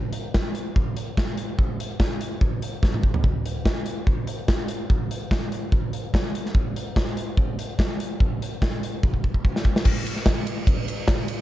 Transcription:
0.13 closed hi-hat
0.34 kick, snare
0.55 closed hi-hat
0.76 kick
0.97 closed hi-hat
1.17 kick, snare
1.37 closed hi-hat
1.59 kick
1.80 closed hi-hat
2.00 kick, snare
2.21 closed hi-hat
2.41 kick
2.62 closed hi-hat
2.83 kick, snare
2.94 mid tom
3.03 kick
3.14 floor tom
3.24 kick
3.46 closed hi-hat
3.65 kick, snare
3.86 closed hi-hat
4.07 kick
4.27 closed hi-hat
4.48 kick, snare
4.68 closed hi-hat
4.90 kick
5.11 closed hi-hat
5.31 kick, snare
5.52 closed hi-hat
5.72 kick
5.93 closed hi-hat
6.14 kick, snare
6.35 closed hi-hat
6.46 snare
6.55 kick
6.76 closed hi-hat
6.96 kick, snare
7.17 closed hi-hat
7.37 kick
7.59 closed hi-hat
7.79 kick, snare
8.00 closed hi-hat
8.20 kick
8.42 closed hi-hat
8.62 kick, snare
8.83 closed hi-hat
9.03 kick
9.14 kick
9.24 kick
9.34 kick
9.45 kick
9.56 snare
9.65 kick
9.76 snare
9.84 kick, crash, shaker
10.06 ride, shaker
10.16 snare
10.26 kick, snare, ride, shaker
10.47 ride, shaker
10.67 kick, ride, shaker
10.88 ride, shaker
11.08 kick, snare, ride, shaker
11.28 ride, shaker

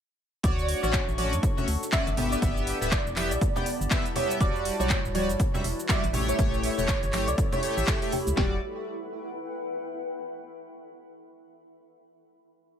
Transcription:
0.43 D2 A3 D4 F#4 C#5 D5 C#6, kick, closed hi-hat, cabasa
0.59 A4, cabasa
0.69 open hi-hat
0.83 A1 C#4 F#4 C#5 D5, cabasa
0.93 E5, kick, clap, closed hi-hat, cabasa
1.08 A1, cabasa
1.18 C#4 F#4 C#5 D5, open hi-hat, high conga
1.22 F#5
1.33 F#2, closed hi-hat, cabasa
1.43 kick, closed hi-hat, cabasa
1.57 C#4 F#4 E5, low conga, cabasa
1.68 D2, open hi-hat
1.83 cabasa
1.92 C#4 F#4 D5 E5, kick, clap, closed hi-hat, cabasa
2.07 G1, closed hi-hat, cabasa
2.17 G3 B3 E4 G4 D5 E5, open hi-hat, low conga
2.30 D5, closed hi-hat, cabasa
2.40 G1 B3 G4 E5 A5 B5, kick, closed hi-hat, cabasa
2.57 cabasa
2.67 open hi-hat
2.81 D1 B3 G4 E5, cabasa
2.91 D5, kick, clap, closed hi-hat, cabasa
3.06 E1, cabasa
3.16 B3 G4 E5, clap, open hi-hat, high conga
3.31 B1 D5, closed hi-hat, cabasa
3.41 kick, closed hi-hat, cabasa
3.55 B3 G4 D5 G5, low conga, cabasa
3.66 open hi-hat
3.81 G1, cabasa
3.91 B3 G4 E5, kick, clap, closed hi-hat, cabasa
4.06 closed hi-hat, cabasa
4.15 B3 G4 C#5 E5, open hi-hat, low conga
4.30 closed hi-hat, cabasa
4.40 E1 G3 E4 F#4 D5, kick, closed hi-hat, cabasa
4.56 B4, cabasa
4.65 open hi-hat
4.79 B1 G3 F#4 C#5 D5, cabasa
4.90 kick, clap, closed hi-hat, cabasa
5.05 D1, cabasa
5.14 G3 F#4 C#5 D5, open hi-hat, high conga
5.29 G1, closed hi-hat, cabasa
5.40 kick, closed hi-hat, cabasa
5.54 G3 F#4 E5, low conga, cabasa
5.64 E1, open hi-hat
5.79 cabasa
5.89 G3 F#4 D5 E5, kick, clap, closed hi-hat, cabasa
6.04 A1, closed hi-hat, cabasa
6.13 A3 G4 A4 C#5, open hi-hat, low conga
6.18 E5
6.28 C#5 E5, closed hi-hat, cabasa
6.38 A1 A3 G4 C#5, kick, closed hi-hat, cabasa
6.53 B5, cabasa
6.62 E5 C#6, open hi-hat
6.78 E1 A3 G4 C#5, cabasa
6.88 C#5, kick, clap, closed hi-hat, cabasa
7.03 G1, closed hi-hat, cabasa
7.13 A3 G4 C#5, clap, open hi-hat, high conga
7.28 C#2 D5, closed hi-hat, cabasa
7.38 kick, closed hi-hat, cabasa
7.52 A3 G4 C#5 E5, closed hi-hat, low conga, cabasa
7.62 A3 G4 C#5, open hi-hat
7.77 A1 A3 G4 E5, cabasa
7.87 kick, clap, closed hi-hat, cabasa
8.02 A3 G4 E5, closed hi-hat, cabasa
8.12 G4, open hi-hat, low conga
8.27 C#2, closed hi-hat, cabasa
8.36 E1 G3 E4 F#4 G4 D5, kick, snare
8.46 B4
8.54 F#5
8.60 G5

